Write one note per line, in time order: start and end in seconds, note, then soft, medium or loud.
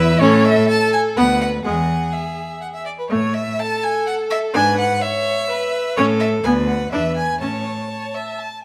0.00 0.20 E2 loud
0.00 0.19 E4 loud
0.00 0.21 B4 loud
0.00 0.21 E5 loud
0.20 0.60 A2 loud
0.20 0.43 C#4 loud
0.20 1.18 A4 loud
0.20 0.46 C#5 loud
0.45 0.68 E5 loud
0.69 0.92 A5 loud
0.92 1.00 G#5 loud
1.16 1.56 D2 medium
1.16 1.39 B3 loud
1.16 1.64 B4 medium
1.16 1.40 F#5 loud
1.41 1.49 F#5 loud
1.64 2.05 E2 medium
1.64 1.87 G#3 medium
1.64 2.84 G#4 medium
1.64 2.14 F#5 loud
2.12 2.61 E5 medium
2.61 2.66 F#5 medium
2.74 2.85 E5 medium
2.86 2.90 D5 medium
2.99 3.09 B4 medium
3.10 3.50 A2 medium
3.10 3.32 A3 medium
3.10 3.35 C#5 loud
3.34 3.60 E5 loud
3.58 4.56 A4 medium
3.58 3.84 A5 loud
3.83 4.06 G#5 loud
4.07 4.15 F#5 loud
4.30 4.38 E5 loud
4.54 4.94 G#2 loud
4.54 4.76 D4 loud
4.54 5.01 B4 loud
4.54 4.77 G#5 loud
4.78 5.03 F#5 loud
5.01 5.49 C#5 loud
5.01 5.96 E5 loud
5.50 5.99 B4 loud
5.96 6.36 A2 loud
5.96 6.19 C#4 loud
5.96 6.46 A4 loud
5.96 6.04 C#5 loud
6.20 6.28 E5 loud
6.44 6.84 D2 loud
6.44 6.66 B3 medium
6.44 6.92 B4 medium
6.44 6.52 G#5 loud
6.67 6.91 F#5 medium
6.91 7.32 E2 medium
6.91 7.15 D4 medium
6.91 7.40 B4 medium
6.91 7.15 E5 loud
7.16 7.39 G#5 loud
7.40 7.81 A2 medium
7.40 7.64 C#4 medium
7.40 7.84 C#5 medium
7.40 8.37 A5 medium
7.90 8.16 C#5 medium
8.14 8.40 E5 medium
8.38 8.62 A5 medium